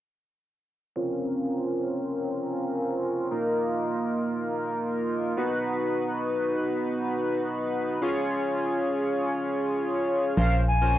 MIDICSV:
0, 0, Header, 1, 4, 480
1, 0, Start_track
1, 0, Tempo, 500000
1, 10546, End_track
2, 0, Start_track
2, 0, Title_t, "Flute"
2, 0, Program_c, 0, 73
2, 9960, Note_on_c, 0, 77, 95
2, 10195, Note_off_c, 0, 77, 0
2, 10243, Note_on_c, 0, 80, 75
2, 10546, Note_off_c, 0, 80, 0
2, 10546, End_track
3, 0, Start_track
3, 0, Title_t, "Analog polysynth"
3, 0, Program_c, 1, 90
3, 919, Note_on_c, 1, 60, 74
3, 923, Note_on_c, 1, 61, 69
3, 925, Note_on_c, 1, 65, 66
3, 928, Note_on_c, 1, 70, 79
3, 3142, Note_off_c, 1, 60, 0
3, 3144, Note_off_c, 1, 61, 0
3, 3145, Note_off_c, 1, 65, 0
3, 3146, Note_off_c, 1, 70, 0
3, 3177, Note_on_c, 1, 58, 74
3, 3180, Note_on_c, 1, 63, 67
3, 3182, Note_on_c, 1, 65, 70
3, 3186, Note_on_c, 1, 70, 82
3, 5118, Note_off_c, 1, 58, 0
3, 5119, Note_off_c, 1, 63, 0
3, 5120, Note_off_c, 1, 65, 0
3, 5122, Note_off_c, 1, 70, 0
3, 5153, Note_on_c, 1, 59, 72
3, 5156, Note_on_c, 1, 63, 64
3, 5160, Note_on_c, 1, 66, 65
3, 5163, Note_on_c, 1, 71, 81
3, 7659, Note_off_c, 1, 59, 0
3, 7660, Note_off_c, 1, 63, 0
3, 7662, Note_off_c, 1, 66, 0
3, 7664, Note_off_c, 1, 71, 0
3, 7695, Note_on_c, 1, 61, 76
3, 7698, Note_on_c, 1, 65, 70
3, 7701, Note_on_c, 1, 68, 67
3, 7705, Note_on_c, 1, 73, 82
3, 9918, Note_off_c, 1, 61, 0
3, 9919, Note_off_c, 1, 65, 0
3, 9921, Note_off_c, 1, 68, 0
3, 9923, Note_off_c, 1, 73, 0
3, 9955, Note_on_c, 1, 61, 73
3, 9956, Note_on_c, 1, 65, 70
3, 9958, Note_on_c, 1, 70, 68
3, 9960, Note_on_c, 1, 72, 86
3, 10169, Note_off_c, 1, 61, 0
3, 10169, Note_off_c, 1, 65, 0
3, 10170, Note_off_c, 1, 70, 0
3, 10171, Note_off_c, 1, 72, 0
3, 10381, Note_on_c, 1, 61, 75
3, 10382, Note_on_c, 1, 65, 65
3, 10385, Note_on_c, 1, 70, 67
3, 10386, Note_on_c, 1, 72, 80
3, 10546, Note_off_c, 1, 61, 0
3, 10546, Note_off_c, 1, 65, 0
3, 10546, Note_off_c, 1, 70, 0
3, 10546, Note_off_c, 1, 72, 0
3, 10546, End_track
4, 0, Start_track
4, 0, Title_t, "FM bass"
4, 0, Program_c, 2, 39
4, 9959, Note_on_c, 2, 34, 109
4, 10546, Note_off_c, 2, 34, 0
4, 10546, End_track
0, 0, End_of_file